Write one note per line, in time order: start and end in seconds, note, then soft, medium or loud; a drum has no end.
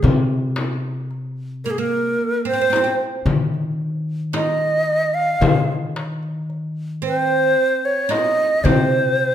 0.03 2.15 C3 medium
0.03 darbuka dum medium
0.03 frame drum medium
0.56 darbuka tek medium
0.56 frame drum medium
1.11 darbuka ka soft
1.64 1.77 A#3 medium
1.64 1.72 A#4 medium
1.64 darbuka ka soft
1.71 1.80 G#4 medium
1.78 2.47 A#3 medium
1.78 2.46 A#4 medium
2.45 2.52 C4 medium
2.45 2.97 C5 loud
2.53 2.60 C4 medium
2.61 2.68 C4 medium
2.70 2.75 C4 medium
2.70 darbuka tek medium
2.70 frame drum medium
2.76 2.83 C4 medium
2.84 2.91 C4 medium
3.26 5.38 D#3 loud
3.26 frame drum medium
3.26 darbuka dum medium
3.54 darbuka ka soft
4.33 5.65 D#4 medium
4.33 5.15 D#5 loud
4.33 darbuka tek medium
4.33 frame drum medium
5.14 5.68 F5 loud
5.41 7.53 D#3 loud
5.41 darbuka dum loud
5.41 frame drum loud
5.96 darbuka tek medium
6.23 darbuka ka soft
6.50 darbuka ka soft
7.02 8.08 C4 medium
7.02 darbuka ka soft
7.06 7.87 C5 loud
7.85 8.12 C#5 loud
8.09 8.64 D#4 medium
8.09 8.66 D#5 loud
8.09 darbuka tek medium
8.09 frame drum medium
8.64 9.35 C3 medium
8.64 9.35 C4 medium
8.64 9.35 C5 loud
8.64 darbuka dum medium
8.64 frame drum medium
8.92 darbuka ka soft